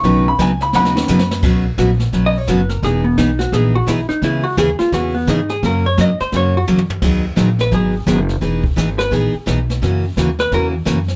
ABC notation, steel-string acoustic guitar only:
X:1
M:4/4
L:1/16
Q:"Swing" 1/4=172
K:B
V:1 name="Steel-string acoustic guitar"
[B,,C,F,B,DB]2 z2 [B,,C,F,B,DB] z3 [B,,C,F,B,DB]2 z2 [B,,C,F,B,DB] z3 | [B,,F,B,CF]2 z2 [B,,F,B,CF] z3 [B,,F,B,CF]2 z2 [B,,F,B,CF] z3 | [E,B,DG]2 z2 [E,B,DG] z3 [E,B,DG]2 z2 [E,B,DG] z3 | [C,E,B,CG]2 z2 [C,E,B,CG] z3 [C,E,B,CG]2 z2 [C,E,B,CG] z3 |
[C,F,A,CF]2 z2 [C,F,A,CF] z3 [C,F,A,CF]2 z2 [C,F,A,CF] z3 | [D,F,B,DG]2 z2 [D,F,B,DG] z3 [D,F,B,DG]2 z2 [D,F,B,DG] z3 | [E,B,DG]2 z2 [E,B,DG] z3 [E,B,DG]2 z2 [E,B,DG] z3 | [C,E,A,CF]2 z2 [C,E,A,CF] z3 [C,E,A,CF]2 z2 [C,E,A,CF] z3 |]